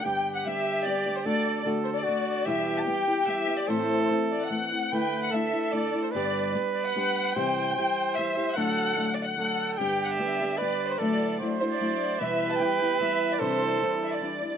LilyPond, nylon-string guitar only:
\new Staff \with { instrumentName = "Nylon-string guitar" } { \time 3/4 \key g \major \tempo 4 = 148 <g, d g b d' g'>4 <g b d' g'>4 <g b d' g'>8 <g b d' g'>8 | <d a d' fis'>4 <d a d' fis'>4 <d a d' fis'>4 | <e, b, e g b e'>4 <e g b e'>8 <e g b e'>8 <e g b e'>8 <e g b e'>8 | <a, e a c' e'>4 <e a c' e'>4 <e a c' e'>8 <a c' e'>8 |
<d a d' e'>4 <d a d' e'>8 <a d' e'>8 <d a d' e'>8 <a d' e'>8 | <g, d g b d' g'>4 <g b d' g'>4 <g b d' g'>4 | <c e g e' g'>4 <e g e' g'>4 <e g e' g'>8 <g e' g'>8 | <d fis a d' fis'>4 <fis a d' fis'>4 <fis a d' fis'>4 |
<g, d g b d' g'>4 <g b d' g'>8 <g b d' g'>8 <g b d' g'>4 | <d fis a d' e'>4 <fis a d' e'>8 <a d' e'>8 <fis a d' e'>4 | <e, b, e g b e'>4 <e g b e'>8 <e g b e'>8 <e g b e'>4 | <c e g d' e'>4 <e g d' e'>4 <e g d' e'>8 <g d' e'>8 | }